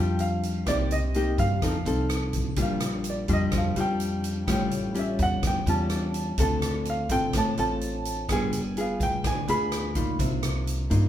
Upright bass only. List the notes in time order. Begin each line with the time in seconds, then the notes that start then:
Already playing: F2
0.67 C2
1.38 G2
1.62 F2
1.85 C2
2.57 A#1
3.28 F2
3.52 F2
3.76 F2
4.47 A1
5.19 E2
5.43 E2
5.66 E2
6.38 D2
7.09 A1
7.33 A1
7.58 A1
8.29 G1
9.00 D2
9.24 D2
9.48 D2
10.19 C2
10.91 G2